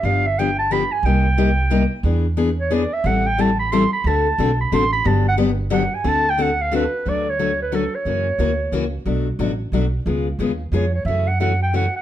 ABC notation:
X:1
M:3/4
L:1/16
Q:"Swing" 1/4=180
K:G
V:1 name="Clarinet"
=f2 e2 g2 a2 b2 _a2 | g12 | z6 ^c2 d2 e2 | f2 g2 a2 b2 c'2 b2 |
a6 b2 c'2 b2 | a2 f2 z4 f2 _a2 | a2 g2 f2 =f2 B4 | [K:D] d2 c4 B2 A2 c2- |
c8- c2 z2 | z12 | z8 c2 c2 | e2 f2 f2 g2 f2 f2 |]
V:2 name="Steel-string acoustic guitar"
[D,=F,B,DG]2 z2 [D,F,B,DG] z3 [D,F,B,DG] z3 | [C,G,_B,_EG]2 z2 [C,G,B,EG] z3 [C,G,B,EG] z3 | [E,B,D^G]2 z2 [E,B,DG] z3 [E,B,DG] z3 | [E,G,CEA]2 z2 [E,G,CEA] z3 [E,G,CEA] z3 |
[D,A,CFA]2 z2 [D,A,CFA] z3 [D,A,CFA] z3 | [D,F,B,DG]2 z2 [D,F,B,DG] z3 [D,F,B,DG] z3 | [D,A,CFA]2 z2 [D,A,CFA] z3 [D,A,CFA] z3 | [K:D] [D,F,A,CF]2 z2 [D,F,A,CF] z3 [D,F,A,CF] z3 |
[C,E,^A,CF]2 z2 [C,E,A,CF] z3 [C,E,A,CF] z3 | [B,,F,A,DF]2 z2 [B,,F,A,DF] z3 [B,,F,A,DF] z3 | [C,^G,B,^E^G]2 z2 [C,G,B,EG] z3 [C,G,B,EG] z3 | [C,E,A,CF]2 z2 [C,E,A,CF] z3 [C,E,A,CF] z3 |]
V:3 name="Upright bass" clef=bass
G,,,12 | C,,12 | E,,12 | A,,,12 |
D,,4 B,,,4 A,,,4 | G,,,12 | D,,12 | [K:D] D,,12 |
F,,4 D,,4 C,,4 | B,,,4 A,,,4 B,,,4 | C,,4 _E,,4 ^E,,4 | F,,12 |]